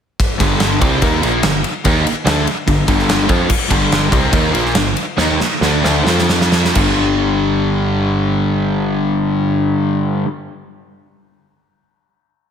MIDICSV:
0, 0, Header, 1, 6, 480
1, 0, Start_track
1, 0, Key_signature, -2, "minor"
1, 0, Tempo, 413508
1, 219, Time_signature, 4, 2, 24, 8
1, 5019, Tempo, 433526
1, 6939, Tempo, 467654
1, 7899, Tempo, 483871
1, 13371, End_track
2, 0, Start_track
2, 0, Title_t, "Distorted electric guitar"
2, 0, Program_c, 0, 30
2, 442, Note_on_c, 0, 43, 90
2, 456, Note_on_c, 0, 50, 90
2, 466, Note_on_c, 0, 55, 93
2, 922, Note_off_c, 0, 55, 0
2, 924, Note_off_c, 0, 43, 0
2, 931, Note_off_c, 0, 50, 0
2, 935, Note_on_c, 0, 48, 91
2, 936, Note_on_c, 0, 55, 95
2, 953, Note_on_c, 0, 60, 101
2, 1171, Note_off_c, 0, 48, 0
2, 1171, Note_off_c, 0, 55, 0
2, 1180, Note_off_c, 0, 60, 0
2, 1181, Note_on_c, 0, 51, 84
2, 1195, Note_on_c, 0, 58, 98
2, 1202, Note_on_c, 0, 63, 98
2, 1414, Note_off_c, 0, 51, 0
2, 1421, Note_off_c, 0, 58, 0
2, 1424, Note_off_c, 0, 63, 0
2, 1426, Note_on_c, 0, 46, 89
2, 1436, Note_on_c, 0, 53, 96
2, 1441, Note_on_c, 0, 58, 111
2, 1656, Note_off_c, 0, 46, 0
2, 1661, Note_off_c, 0, 53, 0
2, 1663, Note_off_c, 0, 58, 0
2, 1670, Note_on_c, 0, 43, 57
2, 1672, Note_on_c, 0, 50, 61
2, 1857, Note_off_c, 0, 43, 0
2, 1858, Note_off_c, 0, 50, 0
2, 2140, Note_on_c, 0, 51, 102
2, 2150, Note_on_c, 0, 58, 102
2, 2153, Note_on_c, 0, 63, 99
2, 2372, Note_off_c, 0, 51, 0
2, 2378, Note_off_c, 0, 58, 0
2, 2379, Note_off_c, 0, 63, 0
2, 2614, Note_on_c, 0, 50, 91
2, 2625, Note_on_c, 0, 57, 94
2, 2635, Note_on_c, 0, 62, 102
2, 2849, Note_off_c, 0, 50, 0
2, 2855, Note_off_c, 0, 57, 0
2, 2860, Note_off_c, 0, 62, 0
2, 3097, Note_on_c, 0, 43, 69
2, 3105, Note_on_c, 0, 50, 71
2, 3289, Note_off_c, 0, 43, 0
2, 3293, Note_off_c, 0, 50, 0
2, 3332, Note_on_c, 0, 43, 89
2, 3333, Note_on_c, 0, 50, 107
2, 3343, Note_on_c, 0, 55, 107
2, 3798, Note_off_c, 0, 50, 0
2, 3802, Note_on_c, 0, 53, 96
2, 3805, Note_off_c, 0, 55, 0
2, 3807, Note_off_c, 0, 43, 0
2, 3809, Note_on_c, 0, 60, 110
2, 3819, Note_on_c, 0, 65, 107
2, 4041, Note_off_c, 0, 53, 0
2, 4045, Note_off_c, 0, 60, 0
2, 4050, Note_off_c, 0, 65, 0
2, 4273, Note_on_c, 0, 43, 86
2, 4287, Note_on_c, 0, 50, 100
2, 4291, Note_on_c, 0, 55, 89
2, 4758, Note_off_c, 0, 43, 0
2, 4765, Note_off_c, 0, 50, 0
2, 4767, Note_off_c, 0, 55, 0
2, 4779, Note_on_c, 0, 48, 86
2, 4791, Note_on_c, 0, 55, 87
2, 4794, Note_on_c, 0, 60, 113
2, 5012, Note_off_c, 0, 48, 0
2, 5018, Note_off_c, 0, 55, 0
2, 5020, Note_off_c, 0, 60, 0
2, 5020, Note_on_c, 0, 51, 98
2, 5025, Note_on_c, 0, 58, 103
2, 5032, Note_on_c, 0, 63, 108
2, 5239, Note_off_c, 0, 51, 0
2, 5241, Note_off_c, 0, 58, 0
2, 5244, Note_on_c, 0, 46, 95
2, 5245, Note_on_c, 0, 53, 98
2, 5250, Note_off_c, 0, 63, 0
2, 5255, Note_on_c, 0, 58, 108
2, 5474, Note_off_c, 0, 46, 0
2, 5475, Note_off_c, 0, 53, 0
2, 5480, Note_off_c, 0, 58, 0
2, 5481, Note_on_c, 0, 43, 69
2, 5485, Note_on_c, 0, 50, 74
2, 5671, Note_off_c, 0, 43, 0
2, 5673, Note_off_c, 0, 50, 0
2, 5953, Note_on_c, 0, 51, 91
2, 5954, Note_on_c, 0, 58, 100
2, 5967, Note_on_c, 0, 63, 100
2, 6189, Note_off_c, 0, 51, 0
2, 6190, Note_off_c, 0, 58, 0
2, 6196, Note_off_c, 0, 63, 0
2, 6461, Note_on_c, 0, 50, 96
2, 6463, Note_on_c, 0, 57, 97
2, 6472, Note_on_c, 0, 62, 104
2, 6685, Note_off_c, 0, 50, 0
2, 6685, Note_off_c, 0, 57, 0
2, 6696, Note_off_c, 0, 62, 0
2, 6698, Note_on_c, 0, 50, 92
2, 6698, Note_on_c, 0, 57, 96
2, 6718, Note_on_c, 0, 62, 99
2, 6935, Note_off_c, 0, 50, 0
2, 6936, Note_off_c, 0, 57, 0
2, 6941, Note_on_c, 0, 53, 97
2, 6945, Note_off_c, 0, 62, 0
2, 6947, Note_on_c, 0, 60, 86
2, 6958, Note_on_c, 0, 65, 93
2, 7644, Note_on_c, 0, 43, 98
2, 7654, Note_off_c, 0, 53, 0
2, 7657, Note_off_c, 0, 60, 0
2, 7662, Note_off_c, 0, 65, 0
2, 7667, Note_on_c, 0, 50, 105
2, 7684, Note_on_c, 0, 55, 106
2, 11125, Note_off_c, 0, 43, 0
2, 11147, Note_off_c, 0, 50, 0
2, 11164, Note_off_c, 0, 55, 0
2, 13371, End_track
3, 0, Start_track
3, 0, Title_t, "Picked electric bass"
3, 0, Program_c, 1, 34
3, 467, Note_on_c, 1, 31, 85
3, 910, Note_off_c, 1, 31, 0
3, 947, Note_on_c, 1, 36, 105
3, 1167, Note_off_c, 1, 36, 0
3, 1185, Note_on_c, 1, 39, 95
3, 1406, Note_off_c, 1, 39, 0
3, 1433, Note_on_c, 1, 34, 85
3, 1650, Note_off_c, 1, 34, 0
3, 1666, Note_on_c, 1, 31, 81
3, 1886, Note_off_c, 1, 31, 0
3, 2156, Note_on_c, 1, 39, 97
3, 2363, Note_off_c, 1, 39, 0
3, 2619, Note_on_c, 1, 38, 94
3, 2842, Note_off_c, 1, 38, 0
3, 3108, Note_on_c, 1, 31, 76
3, 3326, Note_off_c, 1, 31, 0
3, 3343, Note_on_c, 1, 31, 100
3, 3786, Note_off_c, 1, 31, 0
3, 3825, Note_on_c, 1, 41, 98
3, 4044, Note_off_c, 1, 41, 0
3, 4303, Note_on_c, 1, 31, 96
3, 4746, Note_off_c, 1, 31, 0
3, 4790, Note_on_c, 1, 36, 100
3, 5009, Note_off_c, 1, 36, 0
3, 5024, Note_on_c, 1, 39, 94
3, 5238, Note_off_c, 1, 39, 0
3, 5250, Note_on_c, 1, 34, 86
3, 5468, Note_off_c, 1, 34, 0
3, 5485, Note_on_c, 1, 31, 80
3, 5704, Note_off_c, 1, 31, 0
3, 5965, Note_on_c, 1, 39, 91
3, 6186, Note_off_c, 1, 39, 0
3, 6444, Note_on_c, 1, 38, 93
3, 6673, Note_off_c, 1, 38, 0
3, 6698, Note_on_c, 1, 38, 98
3, 6918, Note_off_c, 1, 38, 0
3, 6925, Note_on_c, 1, 41, 90
3, 7605, Note_off_c, 1, 41, 0
3, 7657, Note_on_c, 1, 31, 102
3, 10616, Note_off_c, 1, 31, 0
3, 13371, End_track
4, 0, Start_track
4, 0, Title_t, "Muted distorted electric guitar strokes"
4, 2386, Note_on_c, 9, 29, 54
4, 2502, Note_off_c, 9, 29, 0
4, 2880, Note_on_c, 9, 29, 60
4, 2996, Note_off_c, 9, 29, 0
4, 6210, Note_on_c, 9, 29, 61
4, 6321, Note_off_c, 9, 29, 0
4, 13371, End_track
5, 0, Start_track
5, 0, Title_t, "Muted picked electric bass strokes"
5, 2370, Note_on_c, 9, 29, 43
5, 2486, Note_off_c, 9, 29, 0
5, 2876, Note_on_c, 9, 29, 43
5, 2992, Note_off_c, 9, 29, 0
5, 6213, Note_on_c, 9, 29, 43
5, 6323, Note_off_c, 9, 29, 0
5, 13371, End_track
6, 0, Start_track
6, 0, Title_t, "Drums"
6, 228, Note_on_c, 9, 36, 108
6, 232, Note_on_c, 9, 51, 96
6, 344, Note_off_c, 9, 36, 0
6, 348, Note_off_c, 9, 51, 0
6, 465, Note_on_c, 9, 36, 112
6, 471, Note_on_c, 9, 51, 72
6, 476, Note_on_c, 9, 38, 34
6, 582, Note_off_c, 9, 36, 0
6, 587, Note_off_c, 9, 51, 0
6, 592, Note_off_c, 9, 38, 0
6, 696, Note_on_c, 9, 51, 97
6, 701, Note_on_c, 9, 38, 98
6, 812, Note_off_c, 9, 51, 0
6, 817, Note_off_c, 9, 38, 0
6, 946, Note_on_c, 9, 36, 104
6, 949, Note_on_c, 9, 51, 74
6, 1062, Note_off_c, 9, 36, 0
6, 1065, Note_off_c, 9, 51, 0
6, 1182, Note_on_c, 9, 51, 108
6, 1186, Note_on_c, 9, 36, 103
6, 1298, Note_off_c, 9, 51, 0
6, 1302, Note_off_c, 9, 36, 0
6, 1429, Note_on_c, 9, 51, 77
6, 1545, Note_off_c, 9, 51, 0
6, 1659, Note_on_c, 9, 51, 112
6, 1664, Note_on_c, 9, 38, 111
6, 1775, Note_off_c, 9, 51, 0
6, 1780, Note_off_c, 9, 38, 0
6, 1906, Note_on_c, 9, 51, 77
6, 2022, Note_off_c, 9, 51, 0
6, 2144, Note_on_c, 9, 51, 110
6, 2149, Note_on_c, 9, 36, 112
6, 2260, Note_off_c, 9, 51, 0
6, 2266, Note_off_c, 9, 36, 0
6, 2399, Note_on_c, 9, 51, 76
6, 2515, Note_off_c, 9, 51, 0
6, 2631, Note_on_c, 9, 51, 97
6, 2635, Note_on_c, 9, 38, 111
6, 2747, Note_off_c, 9, 51, 0
6, 2751, Note_off_c, 9, 38, 0
6, 2871, Note_on_c, 9, 51, 71
6, 2987, Note_off_c, 9, 51, 0
6, 3106, Note_on_c, 9, 36, 99
6, 3109, Note_on_c, 9, 51, 93
6, 3222, Note_off_c, 9, 36, 0
6, 3225, Note_off_c, 9, 51, 0
6, 3344, Note_on_c, 9, 36, 112
6, 3344, Note_on_c, 9, 51, 70
6, 3460, Note_off_c, 9, 36, 0
6, 3460, Note_off_c, 9, 51, 0
6, 3471, Note_on_c, 9, 38, 32
6, 3587, Note_off_c, 9, 38, 0
6, 3591, Note_on_c, 9, 51, 96
6, 3596, Note_on_c, 9, 38, 113
6, 3707, Note_off_c, 9, 51, 0
6, 3712, Note_off_c, 9, 38, 0
6, 3822, Note_on_c, 9, 36, 102
6, 3822, Note_on_c, 9, 51, 66
6, 3938, Note_off_c, 9, 36, 0
6, 3938, Note_off_c, 9, 51, 0
6, 4059, Note_on_c, 9, 49, 102
6, 4061, Note_on_c, 9, 36, 115
6, 4175, Note_off_c, 9, 49, 0
6, 4177, Note_off_c, 9, 36, 0
6, 4301, Note_on_c, 9, 36, 103
6, 4304, Note_on_c, 9, 51, 82
6, 4308, Note_on_c, 9, 38, 33
6, 4417, Note_off_c, 9, 36, 0
6, 4420, Note_off_c, 9, 51, 0
6, 4424, Note_off_c, 9, 38, 0
6, 4552, Note_on_c, 9, 51, 88
6, 4556, Note_on_c, 9, 38, 99
6, 4668, Note_off_c, 9, 51, 0
6, 4672, Note_off_c, 9, 38, 0
6, 4784, Note_on_c, 9, 36, 114
6, 4792, Note_on_c, 9, 51, 78
6, 4900, Note_off_c, 9, 36, 0
6, 4908, Note_off_c, 9, 51, 0
6, 5024, Note_on_c, 9, 36, 117
6, 5026, Note_on_c, 9, 51, 108
6, 5135, Note_off_c, 9, 36, 0
6, 5137, Note_off_c, 9, 51, 0
6, 5265, Note_on_c, 9, 51, 79
6, 5376, Note_off_c, 9, 51, 0
6, 5386, Note_on_c, 9, 38, 31
6, 5488, Note_on_c, 9, 51, 108
6, 5493, Note_off_c, 9, 38, 0
6, 5493, Note_on_c, 9, 38, 112
6, 5599, Note_off_c, 9, 51, 0
6, 5603, Note_off_c, 9, 38, 0
6, 5730, Note_on_c, 9, 51, 74
6, 5841, Note_off_c, 9, 51, 0
6, 5969, Note_on_c, 9, 38, 70
6, 6080, Note_off_c, 9, 38, 0
6, 6216, Note_on_c, 9, 38, 71
6, 6327, Note_off_c, 9, 38, 0
6, 6455, Note_on_c, 9, 38, 69
6, 6566, Note_off_c, 9, 38, 0
6, 6703, Note_on_c, 9, 38, 80
6, 6814, Note_off_c, 9, 38, 0
6, 6949, Note_on_c, 9, 38, 94
6, 7051, Note_off_c, 9, 38, 0
6, 7071, Note_on_c, 9, 38, 74
6, 7174, Note_off_c, 9, 38, 0
6, 7180, Note_on_c, 9, 38, 101
6, 7283, Note_off_c, 9, 38, 0
6, 7303, Note_on_c, 9, 38, 81
6, 7405, Note_off_c, 9, 38, 0
6, 7413, Note_on_c, 9, 38, 98
6, 7516, Note_off_c, 9, 38, 0
6, 7544, Note_on_c, 9, 38, 81
6, 7646, Note_off_c, 9, 38, 0
6, 7652, Note_on_c, 9, 57, 89
6, 7657, Note_on_c, 9, 36, 101
6, 7755, Note_off_c, 9, 57, 0
6, 7760, Note_off_c, 9, 36, 0
6, 13371, End_track
0, 0, End_of_file